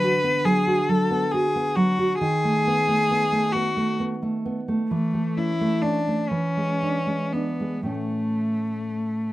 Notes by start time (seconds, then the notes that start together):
Already playing: D3 F#3 B4
0.04 F#4
0.24 B3
0.45 F#3 G#4
0.67 F#4
0.89 F#3 A4
1.11 B3
1.31 F#4 G#4
1.56 B3
1.76 F#3 F#4
1.99 F#4
2.19 D#3 G#4
2.44 A3
2.67 B3
2.88 A3
3.11 B3
3.32 A3
3.53 B3 F#4
3.77 A3
4.00 B3
4.22 A3
4.46 B3
4.68 A3
4.90 E3 A3
5.14 A3
5.37 C#4 E4
5.61 A3
5.82 C#4 D4
6.08 A3
6.29 E3 C#4
6.57 G#3
6.82 D4
7.07 G#3
7.33 B3 D4
7.60 G#3
7.83 A2 A3 C#4
7.88 A3